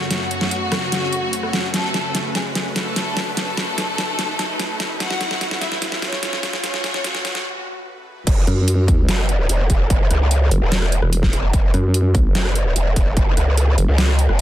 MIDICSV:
0, 0, Header, 1, 7, 480
1, 0, Start_track
1, 0, Key_signature, 3, "minor"
1, 0, Tempo, 408163
1, 125, Time_signature, 4, 2, 24, 8
1, 16947, End_track
2, 0, Start_track
2, 0, Title_t, "Violin section"
2, 0, Program_c, 0, 48
2, 124, Note_on_c, 0, 66, 110
2, 1948, Note_off_c, 0, 66, 0
2, 2044, Note_on_c, 0, 57, 79
2, 2044, Note_on_c, 0, 69, 100
2, 2668, Note_off_c, 0, 57, 0
2, 2668, Note_off_c, 0, 69, 0
2, 2765, Note_on_c, 0, 56, 76
2, 2765, Note_on_c, 0, 68, 85
2, 2859, Note_off_c, 0, 68, 0
2, 3056, Note_off_c, 0, 56, 0
2, 3244, Note_on_c, 0, 57, 75
2, 3244, Note_on_c, 0, 69, 96
2, 3868, Note_off_c, 0, 57, 0
2, 3868, Note_off_c, 0, 69, 0
2, 3964, Note_on_c, 0, 69, 109
2, 3965, Note_on_c, 0, 57, 85
2, 5789, Note_off_c, 0, 57, 0
2, 5789, Note_off_c, 0, 69, 0
2, 5884, Note_on_c, 0, 66, 81
2, 5884, Note_on_c, 0, 78, 103
2, 6508, Note_off_c, 0, 66, 0
2, 6508, Note_off_c, 0, 78, 0
2, 6605, Note_on_c, 0, 64, 81
2, 6605, Note_on_c, 0, 76, 94
2, 6699, Note_off_c, 0, 76, 0
2, 6896, Note_off_c, 0, 64, 0
2, 7084, Note_on_c, 0, 61, 80
2, 7084, Note_on_c, 0, 73, 96
2, 7708, Note_off_c, 0, 61, 0
2, 7709, Note_off_c, 0, 73, 0
2, 7805, Note_on_c, 0, 61, 82
2, 7805, Note_on_c, 0, 73, 103
2, 8764, Note_off_c, 0, 73, 0
2, 8765, Note_off_c, 0, 61, 0
2, 16947, End_track
3, 0, Start_track
3, 0, Title_t, "Supersaw synth"
3, 0, Program_c, 1, 81
3, 0, Note_on_c, 1, 42, 83
3, 0, Note_on_c, 1, 49, 75
3, 0, Note_on_c, 1, 57, 75
3, 0, Note_on_c, 1, 66, 76
3, 0, Note_on_c, 1, 73, 97
3, 1997, Note_off_c, 1, 73, 0
3, 2044, Note_on_c, 1, 71, 98
3, 9677, Note_off_c, 1, 57, 0
3, 9677, Note_off_c, 1, 71, 0
3, 9678, Note_off_c, 1, 42, 0
3, 9678, Note_off_c, 1, 49, 0
3, 9678, Note_off_c, 1, 66, 0
3, 16947, End_track
4, 0, Start_track
4, 0, Title_t, "Wobble bass"
4, 0, Program_c, 2, 39
4, 9724, Note_on_c, 2, 30, 98
4, 9945, Note_off_c, 2, 30, 0
4, 10684, Note_on_c, 2, 30, 100
4, 11145, Note_off_c, 2, 30, 0
4, 11164, Note_on_c, 2, 28, 99
4, 11385, Note_off_c, 2, 28, 0
4, 11405, Note_on_c, 2, 28, 102
4, 11625, Note_off_c, 2, 28, 0
4, 11644, Note_on_c, 2, 30, 97
4, 11865, Note_off_c, 2, 30, 0
4, 11885, Note_on_c, 2, 37, 99
4, 12346, Note_off_c, 2, 37, 0
4, 12484, Note_on_c, 2, 28, 102
4, 12945, Note_off_c, 2, 28, 0
4, 13324, Note_on_c, 2, 28, 96
4, 13545, Note_off_c, 2, 28, 0
4, 13564, Note_on_c, 2, 30, 99
4, 13785, Note_off_c, 2, 30, 0
4, 14524, Note_on_c, 2, 30, 101
4, 14985, Note_off_c, 2, 30, 0
4, 15004, Note_on_c, 2, 28, 102
4, 15225, Note_off_c, 2, 28, 0
4, 15244, Note_on_c, 2, 28, 92
4, 15465, Note_off_c, 2, 28, 0
4, 15484, Note_on_c, 2, 30, 101
4, 15705, Note_off_c, 2, 30, 0
4, 15724, Note_on_c, 2, 37, 99
4, 16185, Note_off_c, 2, 37, 0
4, 16325, Note_on_c, 2, 37, 98
4, 16786, Note_off_c, 2, 37, 0
4, 16804, Note_on_c, 2, 30, 91
4, 16947, Note_off_c, 2, 30, 0
4, 16947, End_track
5, 0, Start_track
5, 0, Title_t, "Wobble bass"
5, 0, Program_c, 3, 39
5, 9964, Note_on_c, 3, 42, 95
5, 10665, Note_off_c, 3, 42, 0
5, 12364, Note_on_c, 3, 30, 101
5, 12465, Note_off_c, 3, 30, 0
5, 12964, Note_on_c, 3, 28, 97
5, 13305, Note_off_c, 3, 28, 0
5, 13804, Note_on_c, 3, 42, 98
5, 14505, Note_off_c, 3, 42, 0
5, 16204, Note_on_c, 3, 30, 99
5, 16305, Note_off_c, 3, 30, 0
5, 16947, End_track
6, 0, Start_track
6, 0, Title_t, "Riser"
6, 0, Program_c, 4, 103
6, 0, Note_on_c, 4, 60, 76
6, 8764, Note_off_c, 4, 60, 0
6, 16947, End_track
7, 0, Start_track
7, 0, Title_t, "Drums"
7, 124, Note_on_c, 9, 38, 64
7, 124, Note_on_c, 9, 42, 75
7, 242, Note_off_c, 9, 38, 0
7, 242, Note_off_c, 9, 42, 0
7, 364, Note_on_c, 9, 42, 48
7, 482, Note_off_c, 9, 42, 0
7, 484, Note_on_c, 9, 38, 57
7, 602, Note_off_c, 9, 38, 0
7, 604, Note_on_c, 9, 42, 77
7, 721, Note_off_c, 9, 42, 0
7, 844, Note_on_c, 9, 37, 72
7, 844, Note_on_c, 9, 38, 63
7, 844, Note_on_c, 9, 42, 50
7, 961, Note_off_c, 9, 37, 0
7, 961, Note_off_c, 9, 38, 0
7, 961, Note_off_c, 9, 42, 0
7, 1084, Note_on_c, 9, 38, 66
7, 1084, Note_on_c, 9, 42, 71
7, 1202, Note_off_c, 9, 38, 0
7, 1202, Note_off_c, 9, 42, 0
7, 1324, Note_on_c, 9, 42, 46
7, 1441, Note_off_c, 9, 42, 0
7, 1564, Note_on_c, 9, 42, 76
7, 1682, Note_off_c, 9, 42, 0
7, 1684, Note_on_c, 9, 37, 48
7, 1802, Note_off_c, 9, 37, 0
7, 1804, Note_on_c, 9, 38, 68
7, 1804, Note_on_c, 9, 42, 50
7, 1922, Note_off_c, 9, 38, 0
7, 1922, Note_off_c, 9, 42, 0
7, 2044, Note_on_c, 9, 38, 73
7, 2044, Note_on_c, 9, 42, 72
7, 2162, Note_off_c, 9, 38, 0
7, 2162, Note_off_c, 9, 42, 0
7, 2284, Note_on_c, 9, 38, 69
7, 2284, Note_on_c, 9, 42, 49
7, 2402, Note_off_c, 9, 38, 0
7, 2402, Note_off_c, 9, 42, 0
7, 2525, Note_on_c, 9, 38, 77
7, 2525, Note_on_c, 9, 42, 77
7, 2642, Note_off_c, 9, 38, 0
7, 2642, Note_off_c, 9, 42, 0
7, 2764, Note_on_c, 9, 38, 74
7, 2764, Note_on_c, 9, 42, 47
7, 2882, Note_off_c, 9, 38, 0
7, 2882, Note_off_c, 9, 42, 0
7, 3004, Note_on_c, 9, 38, 78
7, 3004, Note_on_c, 9, 42, 74
7, 3122, Note_off_c, 9, 38, 0
7, 3122, Note_off_c, 9, 42, 0
7, 3244, Note_on_c, 9, 38, 75
7, 3244, Note_on_c, 9, 42, 49
7, 3362, Note_off_c, 9, 38, 0
7, 3362, Note_off_c, 9, 42, 0
7, 3484, Note_on_c, 9, 38, 80
7, 3484, Note_on_c, 9, 42, 75
7, 3602, Note_off_c, 9, 38, 0
7, 3602, Note_off_c, 9, 42, 0
7, 3724, Note_on_c, 9, 38, 78
7, 3724, Note_on_c, 9, 42, 47
7, 3842, Note_off_c, 9, 38, 0
7, 3842, Note_off_c, 9, 42, 0
7, 3964, Note_on_c, 9, 38, 78
7, 3964, Note_on_c, 9, 42, 75
7, 4082, Note_off_c, 9, 38, 0
7, 4082, Note_off_c, 9, 42, 0
7, 4204, Note_on_c, 9, 38, 82
7, 4204, Note_on_c, 9, 42, 46
7, 4321, Note_off_c, 9, 38, 0
7, 4321, Note_off_c, 9, 42, 0
7, 4444, Note_on_c, 9, 38, 88
7, 4444, Note_on_c, 9, 42, 76
7, 4561, Note_off_c, 9, 38, 0
7, 4561, Note_off_c, 9, 42, 0
7, 4684, Note_on_c, 9, 38, 85
7, 4684, Note_on_c, 9, 42, 50
7, 4802, Note_off_c, 9, 38, 0
7, 4802, Note_off_c, 9, 42, 0
7, 4924, Note_on_c, 9, 38, 84
7, 4924, Note_on_c, 9, 42, 72
7, 5042, Note_off_c, 9, 38, 0
7, 5042, Note_off_c, 9, 42, 0
7, 5164, Note_on_c, 9, 38, 90
7, 5164, Note_on_c, 9, 42, 48
7, 5282, Note_off_c, 9, 38, 0
7, 5282, Note_off_c, 9, 42, 0
7, 5404, Note_on_c, 9, 38, 89
7, 5404, Note_on_c, 9, 42, 78
7, 5522, Note_off_c, 9, 38, 0
7, 5522, Note_off_c, 9, 42, 0
7, 5644, Note_on_c, 9, 38, 83
7, 5644, Note_on_c, 9, 42, 50
7, 5762, Note_off_c, 9, 38, 0
7, 5762, Note_off_c, 9, 42, 0
7, 5884, Note_on_c, 9, 38, 93
7, 5884, Note_on_c, 9, 42, 78
7, 6002, Note_off_c, 9, 38, 0
7, 6002, Note_off_c, 9, 42, 0
7, 6004, Note_on_c, 9, 38, 77
7, 6121, Note_off_c, 9, 38, 0
7, 6124, Note_on_c, 9, 38, 91
7, 6124, Note_on_c, 9, 42, 50
7, 6241, Note_off_c, 9, 38, 0
7, 6241, Note_off_c, 9, 42, 0
7, 6244, Note_on_c, 9, 38, 79
7, 6362, Note_off_c, 9, 38, 0
7, 6364, Note_on_c, 9, 38, 93
7, 6364, Note_on_c, 9, 42, 79
7, 6482, Note_off_c, 9, 38, 0
7, 6482, Note_off_c, 9, 42, 0
7, 6484, Note_on_c, 9, 38, 83
7, 6601, Note_off_c, 9, 38, 0
7, 6604, Note_on_c, 9, 38, 94
7, 6604, Note_on_c, 9, 42, 53
7, 6721, Note_off_c, 9, 38, 0
7, 6721, Note_off_c, 9, 42, 0
7, 6724, Note_on_c, 9, 38, 85
7, 6841, Note_off_c, 9, 38, 0
7, 6843, Note_on_c, 9, 38, 93
7, 6843, Note_on_c, 9, 42, 76
7, 6961, Note_off_c, 9, 38, 0
7, 6961, Note_off_c, 9, 42, 0
7, 6964, Note_on_c, 9, 38, 82
7, 7081, Note_off_c, 9, 38, 0
7, 7084, Note_on_c, 9, 38, 100
7, 7084, Note_on_c, 9, 42, 49
7, 7202, Note_off_c, 9, 38, 0
7, 7202, Note_off_c, 9, 42, 0
7, 7204, Note_on_c, 9, 38, 89
7, 7321, Note_off_c, 9, 38, 0
7, 7324, Note_on_c, 9, 38, 96
7, 7324, Note_on_c, 9, 42, 77
7, 7441, Note_off_c, 9, 38, 0
7, 7441, Note_off_c, 9, 42, 0
7, 7444, Note_on_c, 9, 38, 89
7, 7562, Note_off_c, 9, 38, 0
7, 7564, Note_on_c, 9, 38, 98
7, 7564, Note_on_c, 9, 42, 48
7, 7681, Note_off_c, 9, 38, 0
7, 7681, Note_off_c, 9, 42, 0
7, 7684, Note_on_c, 9, 38, 88
7, 7802, Note_off_c, 9, 38, 0
7, 7804, Note_on_c, 9, 38, 100
7, 7804, Note_on_c, 9, 42, 82
7, 7921, Note_off_c, 9, 38, 0
7, 7921, Note_off_c, 9, 42, 0
7, 7924, Note_on_c, 9, 38, 90
7, 8041, Note_off_c, 9, 38, 0
7, 8043, Note_on_c, 9, 38, 94
7, 8043, Note_on_c, 9, 42, 52
7, 8161, Note_off_c, 9, 38, 0
7, 8161, Note_off_c, 9, 42, 0
7, 8164, Note_on_c, 9, 38, 92
7, 8282, Note_off_c, 9, 38, 0
7, 8284, Note_on_c, 9, 38, 109
7, 8284, Note_on_c, 9, 42, 84
7, 8401, Note_off_c, 9, 38, 0
7, 8401, Note_off_c, 9, 42, 0
7, 8404, Note_on_c, 9, 38, 97
7, 8521, Note_off_c, 9, 38, 0
7, 8524, Note_on_c, 9, 38, 104
7, 8524, Note_on_c, 9, 42, 52
7, 8641, Note_off_c, 9, 38, 0
7, 8641, Note_off_c, 9, 42, 0
7, 8644, Note_on_c, 9, 38, 99
7, 8761, Note_off_c, 9, 38, 0
7, 9724, Note_on_c, 9, 36, 121
7, 9724, Note_on_c, 9, 42, 85
7, 9724, Note_on_c, 9, 49, 100
7, 9842, Note_off_c, 9, 36, 0
7, 9842, Note_off_c, 9, 42, 0
7, 9842, Note_off_c, 9, 49, 0
7, 9964, Note_on_c, 9, 37, 53
7, 9964, Note_on_c, 9, 42, 55
7, 10082, Note_off_c, 9, 37, 0
7, 10082, Note_off_c, 9, 42, 0
7, 10204, Note_on_c, 9, 42, 85
7, 10322, Note_off_c, 9, 42, 0
7, 10444, Note_on_c, 9, 36, 106
7, 10445, Note_on_c, 9, 42, 55
7, 10562, Note_off_c, 9, 36, 0
7, 10562, Note_off_c, 9, 42, 0
7, 10684, Note_on_c, 9, 38, 121
7, 10684, Note_on_c, 9, 42, 85
7, 10802, Note_off_c, 9, 38, 0
7, 10802, Note_off_c, 9, 42, 0
7, 10805, Note_on_c, 9, 37, 79
7, 10922, Note_off_c, 9, 37, 0
7, 10924, Note_on_c, 9, 42, 54
7, 11042, Note_off_c, 9, 42, 0
7, 11164, Note_on_c, 9, 42, 81
7, 11282, Note_off_c, 9, 42, 0
7, 11404, Note_on_c, 9, 36, 63
7, 11404, Note_on_c, 9, 42, 53
7, 11522, Note_off_c, 9, 36, 0
7, 11522, Note_off_c, 9, 42, 0
7, 11644, Note_on_c, 9, 36, 120
7, 11644, Note_on_c, 9, 42, 81
7, 11762, Note_off_c, 9, 36, 0
7, 11762, Note_off_c, 9, 42, 0
7, 11885, Note_on_c, 9, 37, 52
7, 11885, Note_on_c, 9, 42, 55
7, 12002, Note_off_c, 9, 37, 0
7, 12002, Note_off_c, 9, 42, 0
7, 12124, Note_on_c, 9, 42, 84
7, 12242, Note_off_c, 9, 42, 0
7, 12365, Note_on_c, 9, 42, 59
7, 12482, Note_off_c, 9, 42, 0
7, 12605, Note_on_c, 9, 38, 125
7, 12605, Note_on_c, 9, 42, 82
7, 12722, Note_off_c, 9, 38, 0
7, 12722, Note_off_c, 9, 42, 0
7, 12725, Note_on_c, 9, 37, 82
7, 12843, Note_off_c, 9, 37, 0
7, 12845, Note_on_c, 9, 42, 57
7, 12962, Note_off_c, 9, 42, 0
7, 12965, Note_on_c, 9, 37, 53
7, 13082, Note_off_c, 9, 37, 0
7, 13084, Note_on_c, 9, 42, 85
7, 13202, Note_off_c, 9, 42, 0
7, 13204, Note_on_c, 9, 36, 61
7, 13205, Note_on_c, 9, 38, 38
7, 13322, Note_off_c, 9, 36, 0
7, 13322, Note_off_c, 9, 38, 0
7, 13325, Note_on_c, 9, 42, 53
7, 13442, Note_off_c, 9, 42, 0
7, 13564, Note_on_c, 9, 36, 127
7, 13565, Note_on_c, 9, 42, 80
7, 13682, Note_off_c, 9, 36, 0
7, 13682, Note_off_c, 9, 42, 0
7, 13805, Note_on_c, 9, 37, 48
7, 13805, Note_on_c, 9, 42, 55
7, 13923, Note_off_c, 9, 37, 0
7, 13923, Note_off_c, 9, 42, 0
7, 14045, Note_on_c, 9, 42, 86
7, 14162, Note_off_c, 9, 42, 0
7, 14284, Note_on_c, 9, 36, 113
7, 14285, Note_on_c, 9, 42, 53
7, 14402, Note_off_c, 9, 36, 0
7, 14402, Note_off_c, 9, 42, 0
7, 14525, Note_on_c, 9, 38, 126
7, 14525, Note_on_c, 9, 42, 83
7, 14642, Note_off_c, 9, 38, 0
7, 14642, Note_off_c, 9, 42, 0
7, 14645, Note_on_c, 9, 37, 77
7, 14762, Note_off_c, 9, 37, 0
7, 14765, Note_on_c, 9, 42, 52
7, 14882, Note_off_c, 9, 42, 0
7, 15004, Note_on_c, 9, 42, 82
7, 15122, Note_off_c, 9, 42, 0
7, 15244, Note_on_c, 9, 36, 65
7, 15244, Note_on_c, 9, 42, 54
7, 15362, Note_off_c, 9, 36, 0
7, 15362, Note_off_c, 9, 42, 0
7, 15484, Note_on_c, 9, 36, 122
7, 15484, Note_on_c, 9, 42, 80
7, 15602, Note_off_c, 9, 36, 0
7, 15602, Note_off_c, 9, 42, 0
7, 15724, Note_on_c, 9, 37, 50
7, 15724, Note_on_c, 9, 42, 53
7, 15842, Note_off_c, 9, 37, 0
7, 15842, Note_off_c, 9, 42, 0
7, 15964, Note_on_c, 9, 42, 83
7, 16081, Note_off_c, 9, 42, 0
7, 16204, Note_on_c, 9, 42, 51
7, 16322, Note_off_c, 9, 42, 0
7, 16444, Note_on_c, 9, 38, 127
7, 16444, Note_on_c, 9, 42, 74
7, 16562, Note_off_c, 9, 38, 0
7, 16562, Note_off_c, 9, 42, 0
7, 16565, Note_on_c, 9, 37, 75
7, 16682, Note_off_c, 9, 37, 0
7, 16685, Note_on_c, 9, 42, 53
7, 16802, Note_off_c, 9, 42, 0
7, 16805, Note_on_c, 9, 37, 51
7, 16923, Note_off_c, 9, 37, 0
7, 16947, End_track
0, 0, End_of_file